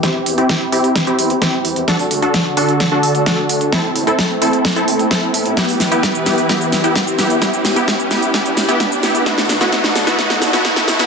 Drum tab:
HH |x-oxx-oxxxoxx-ox|xooxx-oxx-oxx-ox|x-oxx-oxxxoxx-ox|xooxx-oxx-oxx-ox|
SH |----------------|----------------|----------------|x-xxxxxxxxxxxxxx|
SD |o---o---o---o---|o---o---o---o---|o---o---o---o---|o-o-o-o-o-o-o-o-|
BD |o---o---o---o---|o---o---o---o---|o---o---o---o---|o---o---o---o---|

HH |x-oxx-oxxxoxx-ox|xooxx-oxx-oxx-ox|
SH |xxxxxxxxxxxxxxxx|x-xxxxxxxxxxxxxx|
SD |o-o-o-o-o-o-o-o-|oooooooooooooooo|
BD |o---o---o---o---|o---o---o---o---|